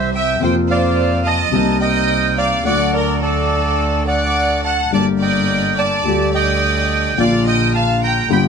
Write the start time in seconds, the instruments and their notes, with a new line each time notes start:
Already playing: double bass C2, grand piano C2 C3 E3 G3 E4, bandoneon C4 E4 G4 C5
0.14 violin section E5, bandoneon E5 G5
0.40 double bass F2, grand piano F2 C3 F3 A#3, bandoneon C4 F4 A#4 C5 G5, violin section C5
0.44 grand piano F4
0.70 violin section C5, bandoneon D5 F5
1.25 violin section D#5, bandoneon D#5 A5
1.52 double bass C2, grand piano C2 C3 G3 A#3 D#4, bandoneon C4 D#4 A#4
1.80 violin section D#5, bandoneon D#5 G5
2.37 violin section D5, bandoneon D5 F5
2.64 double bass D2, grand piano D2 D3 F#3 A3, bandoneon D4 F#4 A4 D5 F#5, violin section D5
2.68 grand piano F#4
2.93 bandoneon A#4 D5, violin section A#4
3.21 violin section A4, bandoneon A4 D5
4.07 violin section D5, bandoneon D5 F#5
4.64 violin section F#5, bandoneon F#5 A5
4.91 double bass G1, grand piano G1 G2 D3 G3 A#3, bandoneon D3 G4 A#4 D5 A5, violin section D5
4.95 grand piano G4
5.21 violin section D5, bandoneon D#5 G5
5.77 violin section D5, bandoneon D5 A5
6.04 double bass D2, grand piano D2 D3 G3 A3, bandoneon D3 G4 A4
6.08 grand piano G4
6.34 violin section D5, bandoneon D#5 G5
7.16 double bass A#1, grand piano A#1 A#2 D3 F3 A#3, bandoneon D4 F4 A#4 D5 F5, violin section D5
7.20 grand piano F4
7.47 violin section D#5, bandoneon D#5 G5
7.74 violin section F5, bandoneon F5 A5
8.03 violin section G5, bandoneon G5 A#5
8.28 double bass G1, grand piano G1 G2 D3 G3 B3 F4, bandoneon B3 F4 G4, violin section G5
8.32 bandoneon G5 B5